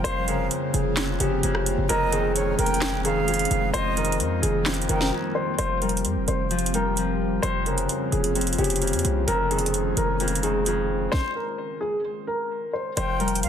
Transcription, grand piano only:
0.04 0.23 C5 loud
0.28 0.71 A#4 medium
0.74 0.92 G#4 medium
1.20 1.85 G4 medium
1.89 2.07 A#4 loud
2.13 2.56 G#4 medium
2.59 3.02 A#4 medium
3.05 3.70 G#4 medium
3.74 3.92 C5 loud
3.97 4.41 A#4 medium
4.42 4.61 G#4 medium
4.89 5.32 A#4 medium
5.35 5.53 C5 medium
5.59 5.77 C5 medium
5.81 6.25 A#4 medium
6.28 6.71 C5 medium
6.75 7.40 A#4 medium
7.42 7.61 C5 loud
7.67 8.10 A#4 medium
8.12 8.30 G#4 medium
8.58 9.24 G4 medium
9.28 9.46 A#4 loud
9.51 9.94 G#4 medium
9.97 10.41 A#4 medium
10.43 11.08 G#4 medium
11.12 11.30 C5 loud
11.36 11.79 A#4 medium
11.81 11.99 G#4 medium
12.27 12.71 A#4 medium
12.73 12.92 C5 medium
12.97 13.15 C5 medium
13.20 13.49 A#4 medium

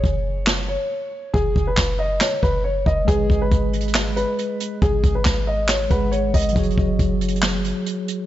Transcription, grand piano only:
0.00 0.65 C#5 medium
0.68 1.30 C#5 medium
1.34 1.65 G#4 loud
1.67 1.97 B4 medium
1.99 2.17 D#5 medium
2.21 2.39 C#5 medium
2.43 2.61 B4 medium
2.64 2.83 C#5 medium
2.86 3.05 D#5 medium
3.08 3.39 G#4 loud
3.42 4.13 B4 medium
4.16 4.78 B4 medium
4.82 5.13 G#4 loud
5.15 5.45 B4 medium
5.47 5.66 D#5 medium
5.69 5.87 C#5 medium
5.91 6.09 B4 medium
6.12 6.30 C#5 medium
6.34 6.52 D#5 medium

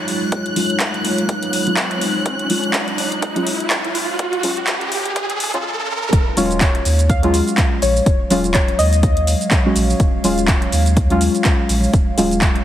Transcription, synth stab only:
0.00 0.53 F#3 loud
0.00 0.54 G#3 medium
0.00 0.54 C#4 medium
0.00 0.54 F4 loud
0.56 0.72 F#3 loud
0.56 0.72 G#3 medium
0.56 0.72 C#4 medium
0.56 0.72 F4 loud
1.66 1.90 F#3 loud
1.66 1.90 G#3 medium
1.66 1.90 C#4 medium
1.66 1.90 F4 loud
2.49 2.73 F#3 medium
2.49 2.73 G#3 medium
2.49 2.73 C#4 medium
2.49 2.73 F4 medium
3.35 4.40 F#3 loud
3.35 4.41 G#3 medium
3.35 4.41 C#4 medium
3.35 4.41 F4 loud
4.43 4.59 F#3 loud
4.43 4.59 G#3 medium
4.43 4.59 C#4 medium
4.43 4.59 F4 loud
5.53 5.64 F#3 loud
5.53 5.64 G#3 medium
5.53 5.64 C#4 medium
5.53 5.65 F4 loud
6.37 6.60 F#3 medium
6.37 6.60 G#3 medium
6.37 6.60 C#4 medium
6.37 6.61 F4 medium
7.22 8.28 F#3 loud
7.22 8.28 G#3 medium
7.22 8.28 C#4 medium
7.22 8.28 F4 loud
8.30 8.46 F#3 loud
8.30 8.46 G#3 medium
8.30 8.46 C#4 medium
8.30 8.47 F4 loud
9.64 10.21 F#3 medium
9.64 10.21 G#3 medium
9.64 10.22 C#4 medium
9.64 10.22 F#4 medium
10.24 10.47 F#3 medium
10.24 10.47 G#3 medium
10.24 10.48 C#4 medium
10.24 10.48 F4 medium
11.10 12.15 F#3 loud
11.10 12.15 G#3 medium
11.10 12.15 C#4 medium
11.10 12.16 F4 loud
12.17 12.33 F#3 loud
12.17 12.33 G#3 medium
12.17 12.34 C#4 medium
12.17 12.34 F4 loud

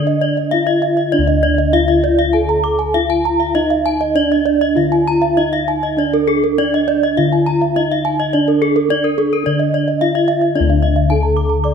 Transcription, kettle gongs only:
0.00 1.70 D3 soft
0.00 0.48 D4 medium
0.53 0.61 D#4 soft
1.14 2.91 D4 soft
1.19 4.75 D2 medium
1.74 1.82 D#4 soft
2.95 3.03 D#4 soft
3.56 4.16 D#4 medium
4.17 4.25 D#4 soft
4.77 6.54 D3 soft
5.38 5.46 D#4 soft
5.98 7.72 D4 soft
6.59 6.67 D#4 soft
7.18 8.87 D3 medium
7.76 7.84 D#4 soft
8.34 9.98 D4 soft
9.47 11.06 D3 soft
10.02 10.10 D#4 soft
10.55 11.74 D4 medium
10.60 11.74 D2 medium
11.10 11.18 D#4 soft

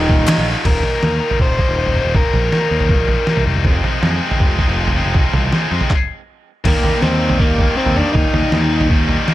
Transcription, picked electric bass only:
0.09 0.25 D#1 loud
0.38 0.54 A#1 medium
0.65 0.81 D#1 medium
1.04 1.19 D#2 medium
1.39 1.55 D#1 medium
1.69 2.00 D#1 medium
2.05 2.21 D#1 medium
2.34 2.50 A#1 medium
2.71 2.99 D#2 medium
2.99 3.15 A#1 medium
3.37 3.66 C2 medium
3.65 3.81 F1 medium
4.03 4.18 F2 medium
4.40 4.56 F1 medium
4.68 5.00 F1 medium
5.06 5.22 F1 medium
5.33 5.50 C2 medium
5.72 5.80 F2 medium
6.65 6.73 D#2 medium
6.84 6.92 D#2 medium
7.03 7.66 D#2 medium
7.86 8.03 D#2 medium
8.15 8.23 D#2 medium
8.34 8.42 D#2 medium
8.52 9.16 D#2 medium

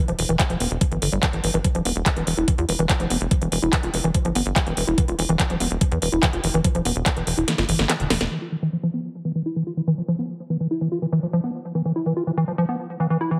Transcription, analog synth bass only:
0.08 0.15 E1 medium
0.19 0.26 E1 loud
0.29 0.36 E1 medium
0.50 0.57 E1 medium
0.60 0.67 E1 loud
0.71 0.78 E1 medium
0.92 0.98 G1 medium
1.02 1.09 G1 loud
1.12 1.19 G1 loud
1.33 1.40 G1 medium
1.44 1.51 G1 loud
1.54 1.61 G1 medium
1.75 1.82 E1 medium
1.85 1.92 E1 loud
1.96 2.03 E1 medium
2.17 2.23 E1 medium
2.27 2.34 E1 loud
2.37 2.44 E1 medium
2.58 2.65 E2 medium
2.69 2.76 E1 loud
2.79 2.86 E1 medium
3.00 3.07 F1 medium
3.10 3.17 F1 loud
3.21 3.28 F1 medium
3.42 3.48 E1 medium
3.52 3.59 E1 loud
3.62 3.69 E1 medium
3.83 3.90 E1 medium
3.94 4.01 E1 loud
4.04 4.11 E1 medium
4.25 4.32 G1 medium
4.35 4.42 G1 loud
4.46 4.53 G1 medium
4.67 4.73 E1 medium
4.77 4.84 E1 loud
4.87 4.94 E1 loud
5.08 5.15 E1 medium
5.19 5.26 E1 loud
5.29 5.36 E1 medium
5.50 5.57 E1 medium
5.60 5.67 E1 loud
5.71 5.78 E1 medium
5.92 5.98 E2 medium
6.02 6.09 E1 loud
6.12 6.19 E1 medium
6.33 6.40 F1 medium
6.44 6.51 F1 loud
6.54 6.61 F1 loud
6.75 6.82 E1 medium
6.85 6.92 E1 loud
6.96 7.03 E1 medium
7.17 7.23 E1 medium
7.27 7.34 E1 loud
7.37 7.44 E1 medium
7.58 7.65 G1 medium
7.69 7.76 G1 loud
7.79 7.86 G1 medium
8.00 8.07 E1 medium
8.10 8.17 E1 loud
8.21 8.28 E1 loud

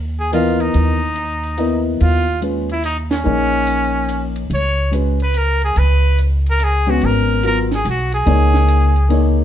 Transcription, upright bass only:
0.00 0.71 D#2 medium
0.74 1.96 D#2 medium
2.01 3.22 D#2 medium
3.26 4.47 A#1 medium
4.50 5.72 C#2 medium
5.76 6.98 C#2 medium
7.03 7.82 G#1 medium
7.85 8.24 B1 medium
8.27 9.44 C#2 medium

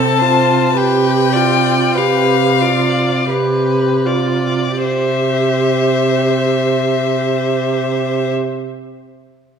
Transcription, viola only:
0.00 0.22 C4 soft
0.21 0.76 F4 soft
0.76 1.37 G4 soft
1.35 1.98 F4 soft
1.96 2.62 G4 soft
2.61 3.29 F4 soft
3.29 4.07 G4 soft
4.05 4.82 F4 soft
4.83 8.33 G4 soft

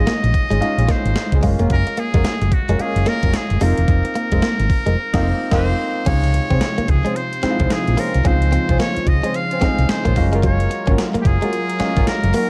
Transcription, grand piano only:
0.00 0.54 G#3 medium
0.00 0.54 C#4 medium
0.00 0.54 D#4 medium
0.00 0.55 F4 medium
0.61 1.40 G#3 medium
0.61 1.42 C#4 medium
0.61 1.43 D#4 medium
0.61 1.42 F4 loud
1.42 2.44 G#3 medium
1.42 2.44 A#3 medium
1.42 2.45 C#4 medium
1.42 2.45 F4 medium
2.78 3.61 G#3 medium
2.78 3.59 A#3 medium
2.78 3.61 C#4 medium
2.78 3.60 F4 medium
3.61 4.63 A#3 medium
3.61 4.63 C4 medium
3.61 4.63 D#4 medium
3.61 4.63 F4 medium
5.14 5.32 A#3 medium
5.14 5.32 C4 medium
5.14 5.32 D#4 medium
5.14 5.32 F4 loud
5.52 5.71 A#3 loud
5.52 5.72 C4 loud
5.52 5.72 D#4 loud
5.52 5.72 F4 loud
6.07 7.09 C3 medium
6.07 7.08 G#3 medium
6.07 7.09 D#4 medium
6.07 7.09 F4 medium
7.43 8.19 G#3 medium
7.43 8.20 C4 medium
7.43 8.20 D#4 medium
7.43 7.52 E4 medium
7.51 8.23 F4 medium
8.25 9.27 G#3 medium
8.25 9.27 C4 medium
8.25 9.27 D#4 medium
8.25 9.27 F4 medium
9.62 10.14 G#3 medium
9.62 10.16 C4 medium
9.62 10.16 D#4 medium
9.62 10.17 G#4 medium
10.16 11.18 G#3 medium
10.16 11.18 A#3 medium
10.16 11.18 C#4 medium
10.16 11.18 F4 medium
11.80 12.50 G#3 medium
11.80 12.50 A#3 medium
11.80 12.50 C#4 medium
11.80 12.50 F4 medium

